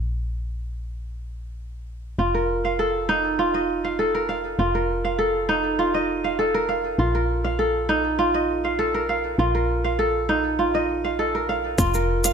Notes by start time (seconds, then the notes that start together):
Already playing: A#1
2.19 F1 F4
2.35 A#4
2.65 F5
2.79 A4
3.09 D#4
3.39 F4
3.54 D#5
3.84 F5
3.99 A4
4.15 A#4
4.29 F5
4.59 F1 F4
4.75 A#4
5.05 F5
5.19 A4
5.49 D#4
5.79 F4
5.95 D#5
6.24 F5
6.39 A4
6.54 A#4
6.69 F5
6.99 A#1 F4
7.15 A#4
7.44 F5
7.59 A4
7.89 D#4
8.19 F4
8.34 D#5
8.65 F5
8.79 A4
8.94 A#4
9.09 F5
9.38 A#1 F4
9.55 A#4
9.84 F5
9.99 A4
10.29 D#4
10.59 F4
10.75 D#5
11.04 F5
11.19 A4
11.35 A#4
11.49 F5
11.78 F1 F4, kick, closed hi-hat, shaker
11.94 A#4, shaker
12.24 F5, closed hi-hat, shaker